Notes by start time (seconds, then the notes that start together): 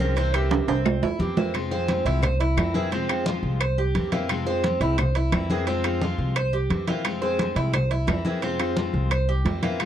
Already playing: C2
0.00 F3 G#3 C4 C#4 F4 A#4
0.16 C3 E3 A#3 C4 E4, high conga, high timbale
0.33 E3 A#3 C4 E4 G4, high conga, high timbale, claves
0.51 high conga, high timbale
0.68 C2 C4, high conga, high timbale
0.85 muted steel-string acoustic guitar stroke, high conga, low timbale, claves
1.02 E2 E4, high conga, low timbale
1.19 F2 E3 A#3 C4 E4 G4, high conga
1.37 E3 A#3 C4 E4 C5, high conga, low timbale
1.54 C3 F3 G#3 C4 F4, high conga, high timbale, claves
1.71 F3 G#3 C4 F4 C5, high conga
1.88 F3 G#3 C4 F4, high conga, high timbale
2.05 C2 E4, high conga, high timbale
2.23 C5, muted steel-string acoustic guitar stroke, high conga, low conga, high timbale, claves
2.40 E4, high conga, high timbale
2.57 F2 E3 A#3 C4 E4, high conga, high timbale, low timbale, claves
2.74 E3 A#3 C4 E4 G#4, high conga
2.91 C3 F3 G#3 C4 F4, high conga, high timbale
3.09 F3 G#3 C4 F4, high conga, high timbale, claves
3.26 F3 G#3 C4 F4, high conga
3.43 C2, high conga
3.60 C5, muted steel-string acoustic guitar stroke, high conga, high timbale, claves
3.78 G4, high conga
3.94 F2 E3 A#3 C4 E4, high conga, high timbale
4.12 E3 A#3 C4 E4 F4, high conga, high timbale
4.29 C3 F3 G#3 C4 F4, high conga, high timbale, claves
4.46 F3 G#3 C4 F4 C5, high conga
4.63 F3 G#3 C4 F4, high conga, high timbale
4.80 C2 E4, high conga, high timbale
4.98 C5, muted steel-string acoustic guitar stroke, high conga, low conga, high timbale, claves
5.15 E4, high conga, high timbale
5.32 F2 E3 A#3 C4 E4, high conga, high timbale, low timbale, claves
5.50 E3 A#3 C4 E4 G#4, high conga
5.67 C3 F3 G#3 C4 F4, high conga, high timbale
5.84 F3 G#3 C4 F4, high conga, high timbale, claves
6.01 F3 G#3 C4 F4, high conga
6.18 C2, high conga
6.36 C5, muted steel-string acoustic guitar stroke, high conga, high timbale, claves
6.53 G4, high conga
6.70 F2 E3 A#3 C4 E4, high conga, high timbale
6.87 E3 A#3 C4 E4 F4, high conga, high timbale
7.04 C3 F3 G#3 C4 F4, high conga, high timbale, claves
7.22 F3 G#3 C4 F4 C5, high conga
7.39 F3 G#3 C4 F4, high conga, high timbale
7.56 C2 E4, high conga, high timbale
7.73 C5, muted steel-string acoustic guitar stroke, high conga, low conga, high timbale, claves
7.90 E4, high conga, high timbale
8.07 F2 E3 A#3 C4 E4, high conga, high timbale, low timbale, claves
8.25 E3 A#3 C4 E4 G#4, high conga
8.42 C3 F3 G#3 C4 F4, high conga, high timbale
8.59 F3 G#3 C4 F4, high conga, high timbale, claves
8.76 F3 G#3 C4 F4, high conga
8.94 C2, high conga
9.11 C5, muted steel-string acoustic guitar stroke, high conga, high timbale, claves
9.28 G4, high conga
9.45 F2 E3 A#3 C4 E4, high conga, high timbale, low timbale
9.62 E3 A#3 C4 E4 F4, high conga, high timbale
9.79 C3 F3 G#3 C4 F4, high conga, high timbale, claves